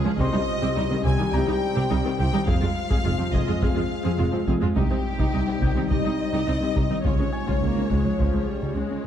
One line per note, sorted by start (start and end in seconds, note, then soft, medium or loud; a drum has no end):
0.00 0.19 G#3 medium
0.00 0.19 C#4 medium
0.00 0.19 F4 medium
0.00 0.19 G#4 medium
0.00 1.30 F6 soft
0.05 0.11 C#2 medium
0.05 0.14 F3 medium
0.05 0.11 F3 medium
0.05 0.11 C#4 medium
0.19 0.25 C2 medium
0.19 0.28 C3 medium
0.19 2.48 G3 medium
0.19 2.44 G3 medium
0.19 0.25 C4 medium
0.19 4.75 C4 medium
0.19 0.25 G4 medium
0.19 2.48 G4 medium
0.19 2.44 G4 medium
0.19 4.75 C5 medium
0.19 1.88 C5 soft
0.19 1.03 D#5 medium
0.19 1.88 C6 medium
0.19 taiko medium
0.33 0.40 C2 medium
0.33 0.39 G3 soft
0.33 0.42 C4 medium
0.33 0.39 D#4 soft
0.62 0.68 C2 medium
0.62 0.71 C3 medium
0.62 0.67 C4 medium
0.62 0.67 G4 medium
0.76 0.82 C2 soft
0.76 0.82 C2 medium
0.76 0.85 G3 medium
0.76 0.82 G3 medium
0.76 0.82 D#4 soft
0.90 0.97 C2 soft
0.90 0.96 D#3 soft
0.90 0.96 C4 medium
0.90 0.99 C4 medium
1.04 1.11 C2 medium
1.04 1.14 C3 medium
1.04 1.10 C4 medium
1.04 1.10 G4 medium
1.04 1.33 G#5 medium
1.18 1.25 C2 soft
1.18 1.28 D#3 medium
1.18 1.24 G3 soft
1.18 1.24 D#4 soft
1.33 1.39 C2 medium
1.33 1.40 C2 medium
1.33 1.42 C3 medium
1.33 1.39 C4 medium
1.33 1.39 G4 medium
1.33 2.19 G5 medium
1.33 3.01 A#5 soft
1.47 1.54 C2 soft
1.47 1.53 G3 soft
1.47 1.57 G3 medium
1.47 1.53 D#4 soft
1.76 1.82 C2 medium
1.76 1.85 C3 medium
1.76 1.82 C4 medium
1.76 1.82 G4 medium
1.90 1.97 C2 soft
1.90 1.97 C2 medium
1.90 1.96 G3 medium
1.90 1.99 C4 medium
1.90 1.96 D#4 soft
2.04 2.11 C2 soft
2.04 2.10 D#3 medium
2.04 2.10 C4 medium
2.04 2.14 C4 soft
2.19 2.25 C2 medium
2.19 2.28 C3 medium
2.19 2.24 C4 medium
2.19 2.25 G4 medium
2.19 2.48 G5 medium
2.33 2.39 C2 soft
2.33 2.42 D#3 medium
2.33 2.39 G3 medium
2.33 2.39 D#4 medium
2.47 2.54 F1 medium
2.47 2.53 F2 medium
2.47 2.57 F3 medium
2.47 4.72 G#3 medium
2.47 4.77 G#3 medium
2.47 2.53 C4 medium
2.47 4.72 F4 medium
2.47 4.77 F4 medium
2.47 2.53 G#4 medium
2.47 3.32 F5 medium
2.47 taiko medium
2.61 2.68 F2 medium
2.61 2.67 G#3 soft
2.61 2.67 F4 soft
2.61 2.71 F4 medium
2.90 2.96 F2 medium
2.90 2.99 F3 medium
2.90 2.96 C4 medium
2.90 2.96 G#4 medium
2.90 taiko medium
3.05 3.11 F1 medium
3.05 3.11 F2 soft
3.05 3.10 G#3 soft
3.05 3.13 C4 soft
3.05 3.10 F4 soft
3.19 3.25 F2 soft
3.19 3.24 F3 soft
3.19 3.25 C4 soft
3.19 3.27 F4 medium
3.33 3.39 F1 medium
3.33 3.39 F2 medium
3.33 3.42 F3 medium
3.33 3.39 C4 medium
3.33 3.39 G#4 medium
3.33 3.62 D#5 medium
3.33 taiko medium
3.47 3.54 F2 soft
3.47 3.56 G#3 medium
3.47 3.53 G#3 soft
3.47 3.53 F4 soft
3.62 3.68 F1 medium
3.62 3.68 F2 medium
3.62 3.70 F3 medium
3.62 3.67 C4 medium
3.62 3.68 G#4 medium
3.62 4.48 F5 medium
3.62 5.30 F6 soft
3.62 taiko medium
3.75 3.82 F2 soft
3.75 3.81 G#3 soft
3.75 3.85 C4 medium
3.75 3.81 F4 soft
4.04 4.11 F2 medium
4.04 4.13 F3 medium
4.04 4.10 C4 medium
4.04 4.10 G#4 medium
4.18 4.25 F1 soft
4.18 4.25 F2 soft
4.18 4.24 G#3 soft
4.18 4.24 F4 soft
4.18 4.28 F4 medium
4.32 4.39 F2 soft
4.32 4.38 F3 soft
4.32 4.38 C4 soft
4.32 4.42 F4 medium
4.47 4.53 F1 medium
4.47 4.54 F2 medium
4.47 4.56 F3 medium
4.47 4.53 C4 medium
4.47 4.53 G#4 medium
4.47 taiko medium
4.61 4.68 F2 soft
4.61 4.67 G#3 medium
4.61 4.71 G#3 medium
4.61 4.67 F4 soft
4.76 4.82 C2 medium
4.76 4.85 C3 medium
4.76 7.05 G3 medium
4.76 7.01 G3 medium
4.76 7.01 C4 medium
4.76 4.82 D#4 medium
4.76 7.05 D#4 medium
4.76 7.01 D#4 medium
4.76 4.82 G4 medium
4.76 5.87 G4 medium
4.76 7.01 C5 medium
4.76 taiko medium
4.90 4.97 C2 soft
4.90 4.96 C4 soft
4.90 4.99 C4 medium
4.90 4.96 D#4 soft
5.19 5.25 C2 soft
5.19 5.28 C3 medium
5.19 5.25 D#4 medium
5.19 5.25 G4 medium
5.19 taiko medium
5.34 5.39 C2 soft
5.34 5.42 G3 medium
5.34 5.39 C4 soft
5.34 5.39 D#4 soft
5.48 5.53 C2 soft
5.48 5.54 G3 soft
5.48 5.54 C4 soft
5.48 5.57 C4 medium
5.61 5.67 C2 medium
5.61 5.68 C2 medium
5.61 5.71 C3 medium
5.61 5.68 D#4 medium
5.61 5.68 G4 medium
5.61 7.29 G6 soft
5.61 taiko medium
5.75 5.81 C2 soft
5.75 5.86 D#3 medium
5.75 5.82 C4 soft
5.75 5.82 D#4 soft
5.90 5.96 C2 medium
5.90 5.97 C2 soft
5.90 6.00 C3 medium
5.90 5.96 D#4 medium
5.90 5.96 G4 medium
5.90 7.05 D#5 medium
5.90 taiko medium
6.04 6.10 C2 soft
6.04 6.14 G3 medium
6.04 6.11 C4 soft
6.04 6.11 D#4 soft
6.33 6.39 C2 medium
6.33 6.42 C3 medium
6.33 6.39 D#4 soft
6.33 6.39 G4 medium
6.47 6.53 C2 soft
6.47 6.54 C2 soft
6.47 6.53 C4 soft
6.47 6.57 C4 medium
6.47 6.53 D#4 soft
6.61 6.67 C2 soft
6.61 6.67 G3 soft
6.61 6.67 C4 soft
6.61 6.71 C4 medium
6.75 6.82 C2 soft
6.75 6.85 C3 medium
6.75 6.81 D#4 soft
6.75 6.81 G4 soft
6.75 taiko medium
6.90 6.96 C2 soft
6.90 6.99 D#3 medium
6.90 6.96 C4 soft
6.90 6.96 D#4 soft
7.04 7.10 C#2 soft
7.04 7.11 C#2 soft
7.04 7.14 C#3 medium
7.04 9.07 G#3 medium
7.04 9.01 G#3 soft
7.04 7.10 C#4 soft
7.04 9.07 C#4 medium
7.04 7.10 F4 soft
7.04 9.07 F4 medium
7.04 9.01 F4 soft
7.04 9.07 G#4 medium
7.04 9.01 C#5 medium
7.04 taiko medium
7.19 7.25 C#2 soft
7.19 7.25 G#3 soft
7.19 7.25 C#4 soft
7.19 7.28 C#4 soft
7.33 9.01 G#5 soft
7.33 9.01 G#6 soft
7.47 7.53 C#2 soft
7.47 7.57 C#3 medium
7.47 7.53 C#4 soft
7.47 7.53 F4 soft
7.47 taiko medium
7.61 7.67 C#2 soft
7.61 7.68 C#2 soft
7.61 7.71 G#3 soft
7.61 7.88 A#3 soft
7.76 7.82 C#2 soft
7.76 7.86 C#4 medium
7.90 7.96 C#2 soft
7.90 7.97 C#2 soft
7.90 8.00 C#3 medium
7.90 8.19 G#3 soft
7.90 taiko medium
8.04 8.10 C#2 soft
8.04 8.14 F3 soft
8.18 8.24 C#2 soft
8.18 8.25 C#2 soft
8.18 8.29 C#3 medium
8.18 8.48 F3 soft
8.18 taiko medium
8.33 8.39 C#2 soft
8.33 8.43 G#3 medium
8.48 8.77 G3 soft
8.62 8.68 C#2 soft
8.62 8.71 C#3 medium
8.76 8.82 C#2 soft
8.76 9.05 G#3 soft
8.76 8.85 C#4 medium
8.90 8.96 C#2 soft
8.90 9.00 C#4 soft